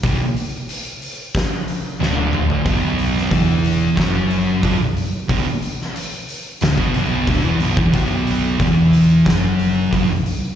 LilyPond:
<<
  \new Staff \with { instrumentName = "Distorted electric guitar" } { \clef bass \time 4/4 \key b \minor \tempo 4 = 91 <b,, b,>16 r2 r8. <d, d>4 | <b,, b,>4 <e, e>4 <fis, fis>4 <eis, eis>16 b,,8 r16 | <b,, b,>16 r4. r16 <d, d>16 <b, b>16 <b,, b,>8 <d, d>16 <e, e>16 <b,, b,>16 <e, e>16 | <b,, b,>4 <e, e>4 <fis, fis>4 <eis, eis>16 b,,8 r16 | }
  \new Staff \with { instrumentName = "Distorted electric guitar" } { \clef bass \time 4/4 \key b \minor <b,, b,>16 r2 r8. <d, d>4 | <b,, b,>4 <e, e>4 <fis, fis>4 <eis, eis>16 b,,8 r16 | <b,, b,>16 r4. r16 <d, d>16 <b, b>16 <b,, b,>8 <d, d>16 <e, e>16 <b,, b,>16 <e, e>16 | <b,, b,>4 <e, e>4 <fis, fis>4 <eis, eis>16 b,,8 r16 | }
  \new Staff \with { instrumentName = "Fretless electric bass" } { \clef bass \time 4/4 \key b \minor b,,,16 r2 r8. d,,4 | b,,,4 e,,4 fis,,4 eis,,16 b,,,8 r16 | b,,,16 r4. r16 d,,16 b,,16 b,,,8 d,,16 e,,16 b,,,16 e,,16 | b,,,4 e,,4 fis,,4 eis,,16 b,,,8 r16 | }
  \new DrumStaff \with { instrumentName = "Drums" } \drummode { \time 4/4 <hho bd>8 hho8 hho8 hho8 <hho bd sn>8 hho8 sn16 tommh16 toml16 tomfh16 | <hho bd>8 hho16 sn16 <hho bd>8 hho8 <hho bd sn>8 hho8 <hho bd>8 hho8 | <hho bd>8 hho16 sn16 hho8 hho8 <hho sn>16 bd16 hho8 <hho bd>8 hho16 bd16 | <hho bd>8 hho8 <hho bd>8 hho8 <hho bd sn>8 hho8 <hho bd>8 hho8 | }
>>